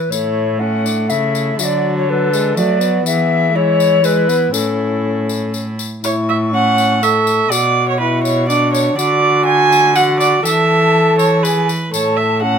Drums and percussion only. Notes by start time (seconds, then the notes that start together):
0.12 tambourine
0.86 tambourine
1.10 tambourine
1.35 tambourine
1.59 tambourine
2.33 tambourine
2.57 tambourine
2.81 tambourine
3.06 tambourine
3.80 tambourine
4.04 tambourine
4.29 tambourine
4.54 tambourine
5.29 tambourine
5.54 tambourine
5.79 tambourine
6.04 tambourine
6.78 tambourine
7.03 tambourine
7.27 tambourine
7.52 tambourine
8.25 tambourine
8.50 tambourine
8.74 tambourine
8.99 tambourine
9.72 tambourine
9.96 tambourine
10.21 tambourine
10.45 tambourine
11.19 tambourine
11.45 tambourine
11.69 tambourine
11.94 tambourine